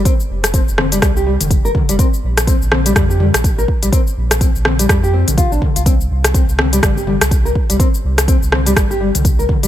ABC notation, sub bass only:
X:1
M:4/4
L:1/16
Q:"Swing 16ths" 1/4=124
K:Fmix
V:1 name="Sub bass" clef=bass
z2 F,,,3 F,,,3 C,,3 F,,,3 z F,,, | z2 B,,,3 B,,,3 F,,3 B,,,3 z B,,, | z2 B,,,3 B,,,3 F,,3 B,,,3 z C,,- | C,,2 C,,3 C,,3 G,,,3 C,,3 z C,, |
z2 C,,3 C,,3 G,,,3 C,,3 z C,, |]